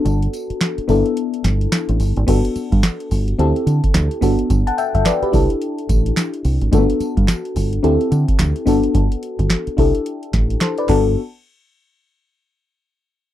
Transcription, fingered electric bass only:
X:1
M:4/4
L:1/16
Q:"Swing 16ths" 1/4=108
K:G
V:1 name="Fingered electric bass" clef=bass
G,,,2 z4 G,,, z3 G,,,2 z A,,, G,,, _A,,, | G,,, z2 G,, z2 G,,,2 D,, z D, z D,, z G,,, z | G,,, z2 G,,, z2 C,, z3 A,,,2 z2 C,, _A,,, | G,,, z2 G,, z2 G,,,2 D,, z D, z D,, z G,,, z |
G,,, z2 G,,, z2 C,, z3 A,,,2 z2 G,,,2 | z16 |]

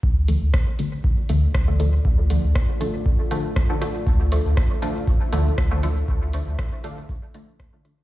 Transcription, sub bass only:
X:1
M:4/4
L:1/16
Q:"Swing 16ths" 1/4=119
K:Dm
V:1 name="Sub bass" clef=bass
D,,2 z D,, z6 D,, z D,,3 z | D,,2 z D,, z12 | D,,2 z D,, z6 D,, z D,,3 z | D,,2 z D,, z12 |]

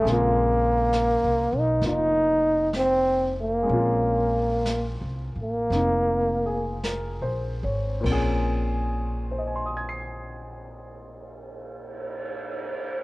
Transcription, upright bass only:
X:1
M:4/4
L:1/8
Q:"Swing" 1/4=56
K:Bbm
V:1 name="Upright bass" clef=bass
B,,,2- (3B,,, C,, _C,, F,,,4 | B,,,2- (3B,,, C,, =A,,, F,,,2- (3F,,, B,,, _A,,, | B,,,8 |]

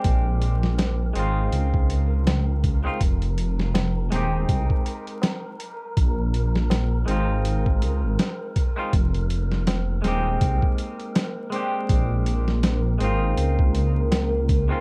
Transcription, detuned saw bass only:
X:1
M:4/4
L:1/16
Q:"Swing 16ths" 1/4=81
K:Fm
V:1 name="Detuned saw bass" clef=bass
B,,,6 A,,,2 D,,6- D,, z | F,,,6 E,,,2 C,, z6 z | B,,,6 A,,,4 D,, A,,, z4 | F,,,6 E,,,2 C,, z6 z |
B,,,6 A,,,2 D,,6- D,, z |]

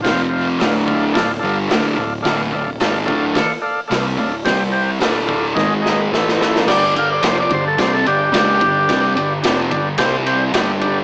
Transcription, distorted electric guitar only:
X:1
M:4/4
L:1/8
Q:1/4=109
K:Gdor
V:1 name="Distorted electric guitar" clef=bass
[F,,C,F,]2 [D,,A,,D,]2 [D,,A,,] [G,,D,G,] [D,,A,,D,] [D,,A,,] | [D,,A,,D,] [D,,A,,] [^G,,_E,^G,] [D,,A,,D,] z2 [C,=G,C] [D,,A,,] | [C,G,C]2 [D,,A,,D,]2 [^G,,^D,^G,]2 [A,,E,A,]2 | [G,,D,G,] [G,,D,] [F,,C,F,] [G,,D,] [C,G,C] [G,,D,] [^C,^G,^C] [=G,,D,] |
[C,G,C] [G,,D,] [F,,C,F,] [G,,D,] [C,G,C]2 [G,,D,G,]2 |]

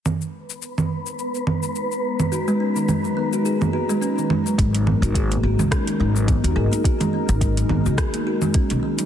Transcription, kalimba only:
X:1
M:4/4
L:1/16
Q:"Swing 16ths" 1/4=106
K:G#m
V:1 name="Kalimba"
z16 | F G, C D, G, F, B, F G A, F G, C D, G, F, | G, F, B, F G A, F G, C D, G, F, B, F G A, | F G, C D, G, F, B, F G A, F G, C D, G, F, |]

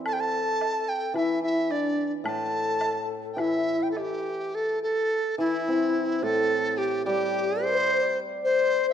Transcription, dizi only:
X:1
M:4/4
L:1/16
Q:1/4=109
K:none
V:1 name="Dizi"
a/2 g/2 a4- a g2 e2 e2 d3 z | a6- a3/2 g/2 e3 g/2 A/2 G4 | A2 A4 E6 A4 | G2 G4 c4 z2 c3- c/2 z/2 |]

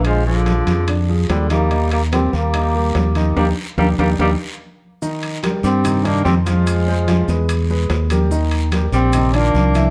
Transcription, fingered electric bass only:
X:1
M:4/4
L:1/8
Q:1/4=145
K:Eb
V:1 name="Fingered electric bass" clef=bass
B,,,3 F,,3 E,,2- | E,,3 E,,3 E,,2 | E,, z E,, E,, E,, z3 | [K:Cm] z3 G,,3 F,,2- |
F,,3 =E,,3 _E,,2- | E,,3 B,,,3 C,,2 |]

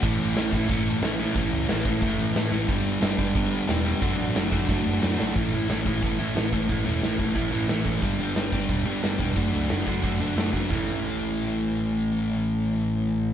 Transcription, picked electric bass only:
X:1
M:4/4
L:1/8
Q:1/4=180
K:Amix
V:1 name="Picked electric bass" clef=bass
A,,, A,,, A,,, A,,, A,,,2 A,,,2 | A,,, C,, A,,, A,,, A,,, A,,, A,, A,,, | G,,, G,,, G,,, G,,, G,,,2 E,,,2 | F,,, A,,, F,,, F,,, F,,, F,,, F,, ^G,,, |
A,,, A,,, A,,, A,,, G,,, A,,, A,,, A,,, | A,,, E,,, A,,, A,,, A,,, A,,, A,,, A,,, | G,,, G,,, G,,, G,,, E,,, G,,, G,,, E,,, | F,,, C,, F,,, F,,, F,,, F,,, F,,, F,,, |
A,,,8- | A,,,8 |]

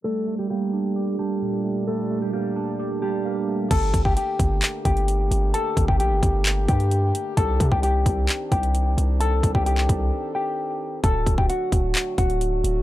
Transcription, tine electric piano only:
X:1
M:4/4
L:1/8
Q:1/4=131
K:Gm
V:1 name="Tine electric piano"
G, A, B, D G D B,, A, | G, A, B, D G D B, A, | z8 | z8 |
z8 | z8 | z8 |]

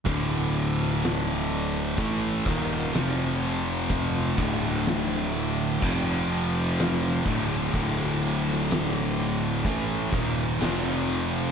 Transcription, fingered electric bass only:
X:1
M:4/4
L:1/8
Q:1/4=63
K:Dm
V:1 name="Fingered electric bass" clef=bass
D,,,4 A,,, _E,,, F,,,2- | F,,, D,,,3 F,,,3 D,,, | D,,,4 A,,, _E,,, F,,,2 |]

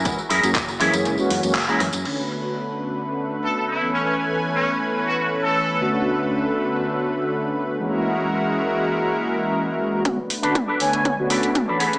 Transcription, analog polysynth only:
X:1
M:4/4
L:1/16
Q:1/4=120
K:Bdor
V:1 name="Analog polysynth"
[E,G,^A,CF] z2 [E,G,A,CF] z2 [E,G,A,CG]3 [E,G,A,CF]2 [E,G,A,CF] z [E,G,A,CE]2 z | [D,A,B,CF]12- [D,A,B,CF]2 [E,A,B,CA]2- | [E,A,B,CA]12- [E,A,B,CA]2 [D,A,B,CF]2- | [D,A,B,CF]12- [D,A,B,CF]2 [E,G,^A,CF]2- |
[E,G,^A,CF]16 | [D,A,B,CF] z2 [D,A,B,CF] z2 [D,A,B,cg]3 [D,A,B,CF]2 [D,A,B,CF] z [E,A,B,CF]2 z |]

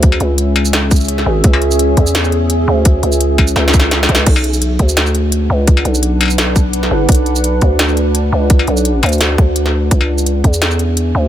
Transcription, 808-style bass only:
X:1
M:4/4
L:1/8
Q:"Swing 16ths" 1/4=170
K:Bdor
V:1 name="808-style bass" clef=bass
D,, C,,6 G,,, | C,,3 E,,4 D,,- | D,, C,,3 C,,3 C,, | B,,,3 D,,4 C,,- |
C,, B,,,6 F,,, | B,,,3 D,,4 C,,- | C,, B,,,2 D,,2 D,,3 | C,,3 E,,4 D,, |]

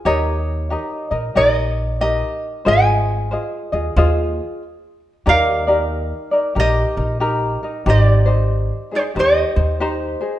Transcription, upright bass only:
X:1
M:4/4
L:1/8
Q:"Swing" 1/4=92
K:Ab
V:1 name="Upright bass" clef=bass
E,,3 B,,, B,,,4 | A,,,3 E,, E,,2 z2 | [K:Eb] E,,4 B,,, B,,,3 | A,,,4 E,, E,,3 |]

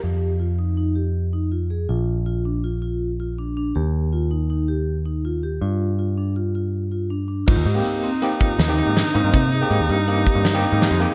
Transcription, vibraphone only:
X:1
M:5/4
L:1/8
Q:1/4=161
K:Ablyd
V:1 name="Vibraphone"
G2 F E E G2 E F A | F2 F D F F2 F D D | G2 F E E G2 E F G | F2 F D F F2 F D D |
F G2 C E F E2 D C | C A2 G E G G2 G A |]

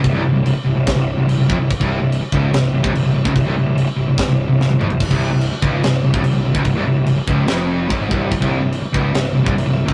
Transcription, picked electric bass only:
X:1
M:4/4
L:1/16
Q:1/4=145
K:none
V:1 name="Picked electric bass" clef=bass
C,,, C,,, C,,, C,,, C,,, z C,,, C,,,2 C,,,2 C,,, C,,, C,,, F,,, C,,, | z C,,,2 C,,,2 z _D,,,2 C,,,2 C,,, C,,, C,,, C,,, C,,, D,,, | C,,, C,,, C,,, C,,, C,,, z C,,, C,,,2 C,,,2 C,,, C,,, C,,, F,,, C,,, | z C,,,2 C,,,2 z _D,,,2 C,,,2 C,,, C,,, C,,, C,,, C,,, D,,, |
C,,, C,,, C,,, C,,, C,,, z _D,,,2 F,,,4 _A,,,2 C,,,2 | z C,,,2 C,,,2 z _D,,,2 C,,,2 C,,, C,,, C,,, C,,, C,,, D,,, |]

